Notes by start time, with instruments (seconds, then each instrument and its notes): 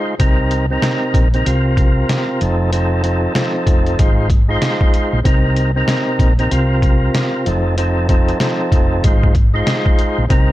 Already playing: tonewheel organ G#3 D#4 F4 C5
0.19 fretless electric bass C2, tonewheel organ C3 C4 D#4 A#4, kick, closed hi-hat
0.51 closed hi-hat
0.71 tonewheel organ C3 C4 D#4 A#4
0.82 snare, closed hi-hat
1.14 fretless electric bass A#1, kick, closed hi-hat
1.34 tonewheel organ C3 C4 D#4 A#4, closed hi-hat
1.45 fretless electric bass C2, tonewheel organ C3 C4 F4 A#4, closed hi-hat
1.77 kick, closed hi-hat
2.09 snare, closed hi-hat
2.40 fretless electric bass F1, tonewheel organ F3 C4 D#4 A4, closed hi-hat
2.72 tonewheel organ F3 C4 D#4 A4, closed hi-hat
3.03 tonewheel organ F3 C4 D#4 A4, closed hi-hat
3.34 tonewheel organ F3 C4 D#4 A4, snare, closed hi-hat
3.67 fretless electric bass F1, kick, closed hi-hat
3.86 closed hi-hat
3.99 fretless electric bass G#1, tonewheel organ G#3 D#4 F4 C5, kick, closed hi-hat
4.30 kick, closed hi-hat
4.48 tonewheel organ G#3 D#4 F4 C5
4.62 snare, closed hi-hat
4.81 kick
4.94 closed hi-hat
5.13 fretless electric bass A#1
5.24 fretless electric bass C2, tonewheel organ C3 C4 D#4 A#4, kick, closed hi-hat
5.56 closed hi-hat
5.76 tonewheel organ C3 C4 D#4 A#4
5.88 snare, closed hi-hat
6.19 fretless electric bass A#1, kick, closed hi-hat
6.39 tonewheel organ C3 C4 D#4 A#4, closed hi-hat
6.50 fretless electric bass C2, tonewheel organ C3 C4 F4 A#4, closed hi-hat
6.82 kick, closed hi-hat
7.15 snare, closed hi-hat
7.46 fretless electric bass F1, tonewheel organ F3 C4 D#4 A4, closed hi-hat
7.77 tonewheel organ F3 C4 D#4 A4, closed hi-hat
8.08 tonewheel organ F3 C4 D#4 A4, kick, closed hi-hat
8.29 closed hi-hat
8.40 tonewheel organ F3 C4 D#4 A4, snare, closed hi-hat
8.72 fretless electric bass F1, kick, closed hi-hat
9.04 fretless electric bass G#1, tonewheel organ G#3 D#4 F4 C5, kick, closed hi-hat
9.23 kick
9.35 kick, closed hi-hat
9.54 tonewheel organ G#3 D#4 F4 C5
9.67 snare, closed hi-hat
9.86 kick
9.99 closed hi-hat
10.18 fretless electric bass A#1
10.29 fretless electric bass C2, tonewheel organ C3 C4 D#4 A#4, kick, closed hi-hat